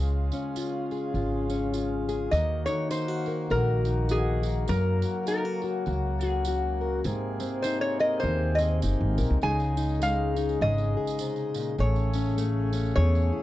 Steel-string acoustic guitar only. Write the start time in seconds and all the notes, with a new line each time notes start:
Already playing: C#3
0.33 C#4
0.57 F4
0.92 G#4
1.15 F4
1.50 C#4
1.74 F4
2.09 G#4
2.32 D#3
2.67 D#4
2.91 D#4
3.08 F#4
3.27 A#4
3.51 F#4
3.85 D#4
4.11 F#4
4.45 F#4
4.68 F#3
5.04 F#4
5.28 D#4
5.45 F#4
5.64 F#4
5.88 F#4
6.23 F#4
6.48 F#4
6.81 A#4
7.04 G#2
7.40 C4
7.65 D#4
8.00 A#4
8.23 D#4
8.59 C4
8.83 D#4
9.18 A#4
9.42 C#3 G#3 D#4 G#4
9.77 D#4
10.02 G#3
10.37 D#4
10.62 G#4
10.97 G#4
11.20 C3
11.55 A#2
11.78 A2
12.15 C#4
12.38 A3
12.74 C#4
12.98 G#4
13.32 E4